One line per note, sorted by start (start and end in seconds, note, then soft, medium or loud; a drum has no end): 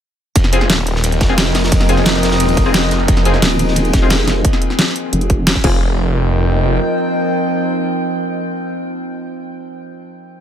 0.35 0.68 F1 loud
0.35 4.41 F3 medium
0.35 4.41 C4 medium
0.35 4.45 A#4 medium
0.35 2.38 G5 medium
0.35 kick loud
0.35 closed hi-hat loud
0.35 ride loud
0.44 snare medium
0.53 0.65 C4 medium
0.53 0.65 F4 medium
0.53 0.65 G#4 loud
0.53 4.45 D#5 medium
0.53 closed hi-hat medium
0.53 ride medium
0.61 snare soft
0.61 ride soft
0.70 1.19 D#1 loud
0.70 snare loud
0.70 closed hi-hat loud
0.70 open hi-hat medium
0.78 snare soft
0.87 closed hi-hat medium
0.87 ride medium
0.96 snare soft
1.04 closed hi-hat loud
1.04 ride medium
1.12 closed hi-hat soft
1.21 1.71 F1 medium
1.21 kick loud
1.21 snare medium
1.21 closed hi-hat medium
1.21 ride medium
1.29 1.87 C4 medium
1.29 1.87 F4 medium
1.29 1.87 G#4 medium
1.38 snare loud
1.38 closed hi-hat loud
1.38 ride medium
1.46 ride soft
1.54 snare loud
1.54 snare medium
1.54 closed hi-hat medium
1.54 open hi-hat medium
1.64 snare loud
1.64 open hi-hat medium
1.72 2.05 F1 loud
1.72 kick loud
1.72 closed hi-hat loud
1.72 ride medium
1.80 snare medium
1.80 ride soft
1.89 2.02 C4 medium
1.89 2.02 F4 medium
1.89 2.02 G#4 loud
1.89 closed hi-hat medium
1.89 ride medium
1.97 snare soft
2.06 2.56 F1 loud
2.06 snare loud
2.06 closed hi-hat medium
2.06 ride medium
2.15 ride soft
2.23 snare loud
2.23 closed hi-hat medium
2.23 open hi-hat medium
2.31 snare loud
2.31 open hi-hat medium
2.40 4.43 G#4 medium
2.40 closed hi-hat medium
2.40 ride medium
2.49 closed hi-hat soft
2.57 3.07 F1 loud
2.57 kick loud
2.57 closed hi-hat medium
2.57 ride medium
2.66 3.23 C4 medium
2.66 3.23 F4 medium
2.66 3.23 G#4 medium
2.74 snare loud
2.74 closed hi-hat medium
2.91 snare soft
2.91 closed hi-hat medium
2.91 ride medium
3.00 ride soft
3.08 3.41 F1 loud
3.08 kick loud
3.08 closed hi-hat medium
3.08 ride medium
3.17 snare soft
3.25 3.38 C4 medium
3.25 3.38 F4 medium
3.25 3.38 G#4 loud
3.25 closed hi-hat medium
3.25 ride medium
3.34 snare soft
3.34 ride soft
3.42 3.92 D#1 loud
3.42 snare loud
3.42 closed hi-hat medium
3.42 open hi-hat medium
3.51 snare soft
3.59 closed hi-hat medium
3.59 ride medium
3.68 snare soft
3.76 closed hi-hat medium
3.76 ride loud
3.85 closed hi-hat soft
3.93 4.43 F1 medium
3.93 kick loud
3.93 snare medium
3.93 closed hi-hat medium
3.93 ride medium
4.02 4.60 C4 medium
4.02 4.60 F4 medium
4.02 4.60 G#4 medium
4.10 snare loud
4.10 closed hi-hat medium
4.10 ride medium
4.19 ride soft
4.27 snare soft
4.27 snare medium
4.27 closed hi-hat medium
4.27 ride medium
4.45 kick loud
4.45 closed hi-hat loud
4.53 snare soft
4.62 closed hi-hat medium
4.70 snare soft
4.79 snare loud
4.79 closed hi-hat loud
4.96 closed hi-hat medium
5.13 5.46 F1 medium
5.13 closed hi-hat medium
5.21 closed hi-hat soft
5.30 kick loud
5.30 closed hi-hat medium
5.47 snare loud
5.47 closed hi-hat medium
5.55 kick medium
5.64 6.79 F1 loud
5.64 8.62 F3 medium
5.64 8.62 C4 medium
5.64 8.62 F4 medium
5.64 8.62 G#4 medium
5.64 8.62 A#4 medium
5.64 8.62 G5 medium
5.64 kick loud
5.64 crash medium
5.69 8.67 D#5 medium